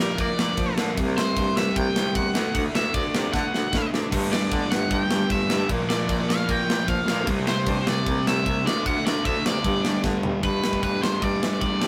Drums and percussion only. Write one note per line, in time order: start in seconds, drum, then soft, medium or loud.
0.18 kick loud
0.18 crash medium
0.39 snare loud
0.57 kick loud
0.57 crash medium
0.78 snare loud
0.98 kick loud
0.98 crash medium
1.18 snare loud
1.37 kick loud
1.37 crash medium
1.57 snare loud
1.76 kick loud
1.76 crash medium
1.96 snare loud
2.15 kick loud
2.15 crash medium
2.35 snare loud
2.55 kick loud
2.55 crash medium
2.75 snare loud
2.94 kick loud
2.94 crash medium
3.15 snare loud
3.34 kick loud
3.34 snare medium
3.54 snare medium
3.73 kick loud
3.73 snare loud
3.94 snare loud
4.12 kick loud
4.12 crash loud
4.33 snare loud
4.52 kick loud
4.52 crash medium
4.72 snare loud
4.90 kick loud
4.90 crash medium
5.11 snare loud
5.30 kick loud
5.30 crash medium
5.50 snare loud
5.69 kick loud
5.69 crash medium
5.90 snare loud
6.09 kick loud
6.09 crash medium
6.30 snare loud
6.49 kick loud
6.49 crash medium
6.70 snare loud
6.88 kick loud
6.88 crash medium
7.08 snare loud
7.27 kick loud
7.27 crash medium
7.47 snare loud
7.66 kick loud
7.66 crash medium
7.87 snare loud
8.06 kick loud
8.06 crash medium
8.27 snare loud
8.46 kick loud
8.46 crash medium
8.67 snare loud
8.86 kick loud
8.86 crash medium
9.07 snare loud
9.25 kick loud
9.25 crash medium
9.46 snare loud
9.64 kick loud
9.64 crash medium
9.85 snare loud
10.04 kick loud
10.04 snare medium
10.23 floor tom loud
10.43 kick loud
10.43 crash medium
10.64 snare loud
10.73 kick medium
10.83 kick loud
10.83 crash medium
11.04 snare loud
11.22 kick loud
11.22 crash medium
11.43 snare loud
11.61 kick loud
11.61 crash medium
11.82 snare loud